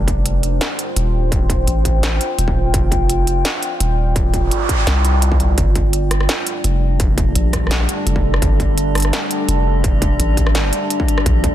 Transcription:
Already playing: F1 F4 C5 G5
0.08 kick, closed hi-hat
0.26 closed hi-hat
0.43 closed hi-hat
0.61 snare, closed hi-hat
0.79 closed hi-hat
0.96 D#1, closed hi-hat
1.32 kick, closed hi-hat
1.50 kick, closed hi-hat
1.67 A1, closed hi-hat
1.85 kick, closed hi-hat
2.03 snare, closed hi-hat
2.21 closed hi-hat
2.38 D#1, closed hi-hat
2.48 kick
2.74 F1 D5, kick, closed hi-hat
2.92 kick, closed hi-hat
3.10 closed hi-hat
3.27 closed hi-hat
3.45 snare, closed hi-hat
3.63 closed hi-hat
3.80 D#1, closed hi-hat
4.16 kick, closed hi-hat, noise sweep
4.34 kick, closed hi-hat
4.51 closed hi-hat
4.69 kick, closed hi-hat
4.87 C2, snare, closed hi-hat
5.05 closed hi-hat
5.22 closed hi-hat
5.32 kick
5.40 closed hi-hat
5.58 G1 G3 D4 A4, kick, closed hi-hat
5.76 kick, closed hi-hat
5.93 closed hi-hat
6.11 cross-stick, closed hi-hat
6.21 cross-stick
6.29 snare, closed hi-hat
6.47 closed hi-hat
6.64 F1, closed hi-hat
7.00 kick, closed hi-hat
7.18 kick, closed hi-hat
7.36 A#1, closed hi-hat
7.53 kick, cross-stick, closed hi-hat
7.67 cross-stick
7.71 snare, closed hi-hat
7.81 cross-stick
7.89 closed hi-hat
8.06 F1, closed hi-hat
8.16 kick
8.34 cross-stick
8.42 G1, kick, closed hi-hat
8.60 kick, closed hi-hat
8.78 closed hi-hat
8.95 cross-stick, closed hi-hat
8.98 closed hi-hat
9.00 closed hi-hat
9.02 cross-stick, closed hi-hat
9.13 snare, closed hi-hat
9.31 closed hi-hat
9.48 F1, closed hi-hat
9.84 kick, closed hi-hat
10.02 kick, closed hi-hat
10.19 A1, closed hi-hat
10.37 kick, closed hi-hat
10.47 cross-stick
10.55 snare, closed hi-hat
10.64 cross-stick
10.73 closed hi-hat
10.90 closed hi-hat
11.00 kick
11.08 closed hi-hat
11.18 cross-stick
11.26 A#1 A#3 F4 C5, kick, closed hi-hat
11.44 kick, closed hi-hat

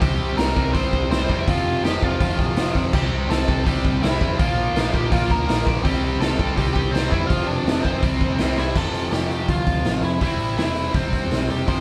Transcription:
0.00 C2 C3 G3 C4 G4 G5, kick, open hi-hat
0.20 C2
0.37 C2 C3 G3 C4 A#4 A#5, snare, open hi-hat
0.55 C2 C3 G3 C4, kick
0.73 C2 C3 G3 C4 C5 C6, kick, open hi-hat
0.93 C2, kick
1.10 C2 C3 G3 C4 C5 C6, snare, open hi-hat
1.28 F2 C3 G3 C4, kick
1.39 E5
1.47 F1 F2 C3 F3 F4 F5, kick, open hi-hat
1.83 F1 F2 C3 F3 G4 G5, snare, open hi-hat
2.02 F1 F2 C3 F3 F4 F5, kick
2.20 F1 F2 C3 F3, kick, open hi-hat
2.39 A#1, kick
2.56 F1 F2 C3 F3, snare, open hi-hat
2.75 F1 F2 C3 F3, kick
2.93 C2 C3 G3 C4 G4 G5, kick, crash
3.12 C2
3.29 C2 C3 G3 C4 A4 A5, snare, open hi-hat
3.47 C2 C3 G3 C4, kick
3.65 C2 C3 G3 C4 G4 G5, kick, open hi-hat
3.85 C2, kick
4.02 C2 C3 G3 C4 E4 E5, snare, open hi-hat
4.20 F2 C3 G3 C4, kick
4.38 A#1 A#2 F3 A#3 F4 F5, kick, open hi-hat
4.75 A#1 A#2 F3 A#3, snare, open hi-hat
4.92 A#1 A#2 F3 A#3 G4 G5, kick
5.11 A#1 A#2 F3 A#3 F4 F5, kick, open hi-hat
5.30 D2 A#4 A#5, kick
5.47 A#1 A#2 F3 A#3, snare, open hi-hat
5.66 A#1 A#2 F3 A#3, kick
5.84 C2 C3 G3 C4 G4 G5, kick, open hi-hat
6.03 C2
6.20 C2 C3 G3 C4 A4 A5, snare, open hi-hat
6.38 C2 C3 G3 C4, kick
6.56 C2 C3 G3 C4 G4 G5, kick, open hi-hat
6.74 C2 G4 G5, kick
6.91 C2 C3 G3 C4 C5, open hi-hat
6.96 snare
7.11 F2 C3 G3 C4 E4 E5, kick
7.27 F1 F2 C3 F3 F4 F5, kick, open hi-hat
7.46 D4 D5
7.65 F1 F2 C3 F3, snare, open hi-hat
7.83 F1 F2 C3 F3 C4 C5, kick
8.02 C2 C3 G3 C4, kick, open hi-hat
8.21 F2, kick
8.38 C2 C3 G3 C4, snare, open hi-hat
8.57 C2 C3 G3 C4 E4 E5, snare
8.75 F1 F2 C3 F3 A4 A5, kick, crash
8.94 F1, open hi-hat
9.12 F1 G4 G5, snare, open hi-hat
9.29 F1, open hi-hat
9.48 D2 F4 F5, kick, open hi-hat
9.67 kick, open hi-hat
9.85 A1, snare, open hi-hat
10.03 F2 E4 E5, open hi-hat
10.21 E1 C3 G3 C4 E4 E5, kick, open hi-hat
10.39 A1, open hi-hat
10.57 E1 E4 E5, snare, open hi-hat
10.75 open hi-hat
10.94 E1 C4 C5, kick, open hi-hat
11.13 E1, kick, open hi-hat
11.31 B1, snare, open hi-hat
11.49 E1 G4 G5, open hi-hat
11.66 F1 F2 C3 F3 C5 C6, kick, open hi-hat

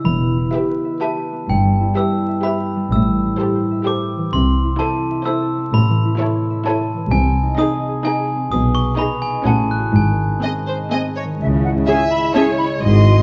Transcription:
Already playing: E4
0.05 E1 E2 E3 B5
0.21 B3
0.37 E4
0.53 G4 B4 E5
0.70 B4
0.85 E5
1.01 G4 B4 E5 A5
1.17 G4
1.33 B3
1.49 G1 G2 G5
1.65 G3
1.81 E4
1.96 G4 B4 E5 E6
2.12 B4
2.28 E5
2.43 G4 B4 E5 B5
2.60 G4
2.76 G3
2.92 A1 A2 E6
3.08 E3
3.24 E4
3.39 G4 A4 C5
3.55 C5
3.71 E5
3.86 G4 A4 C5 D6
4.02 G4
4.18 E3
4.33 C2 C3 C6
4.49 C4
4.64 E4
4.79 E4 A4 C5 A5
4.95 C5
5.10 E5
5.25 E4 A4 C5 E6
5.42 A4
5.58 C4
5.74 A1 A2 B5
5.90 E3
6.05 E4
6.20 E4 A4 C#5
6.35 C#5
6.50 E5
6.66 E4 A4 C#5 A5
6.81 A4
6.97 E3
7.11 C2 C3 G#5
7.27 C4
7.42 D#4
7.58 D#4 G#4 D#5 D#6
7.73 D#5
7.89 G#4
8.05 D#4 G#4 D#5 G#5
8.21 G#4
8.36 C4
8.51 B1 B2 D#6
8.67 B3
8.75 C#6
8.83 D#4
8.98 D#4 G#4 D#5 B5
9.14 B4
9.22 G#5
9.30 D#5
9.45 A1 A2 C#4 F#4 F#5 A5
9.62 C#4
9.71 F#6
9.78 F#4 C#5
9.94 G#1 G#2 G#5
10.11 D#3
10.28 D#4
10.43 C4 G#4 D#5
10.60 C5
10.68 C5
10.76 D#5
10.91 C4 G#4 C5 D#5 G#5
11.09 G#4
11.16 C#5 D#5
11.24 D#3
11.40 C#2 C#3 G#3 E4 E5
11.64 E4 F#5
11.87 C#3 C#4 G#4 C#5 E5 G#5
12.11 D#5 B5
12.34 C#3 C#4 G#4 C#5 E5 G#5 A5
12.58 E4 B5
12.81 G#1 G#2 F#4 D#5 C6
13.06 F#4

